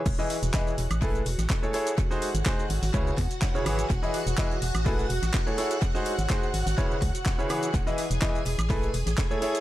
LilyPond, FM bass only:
\new Staff \with { instrumentName = "FM bass" } { \clef bass \time 4/4 \key e \major \tempo 4 = 125 e,,16 r8 e,,16 r8 e,,16 a,,8. e,,16 a,,16 r4 | r8. gis,,16 r8 gis,,16 gis,,16 cis,8 e,16 r8. gis,,8 | e,,16 r8 e,,16 r8 e,,16 a,,8. e,,16 a,,16 r4 | r8. gis,,16 r8 gis,,16 gis,,16 r8 cis,16 r4 r16 |
e,,16 r8 e,,16 r8 e,,16 a,,8. e,,16 a,,16 r4 | }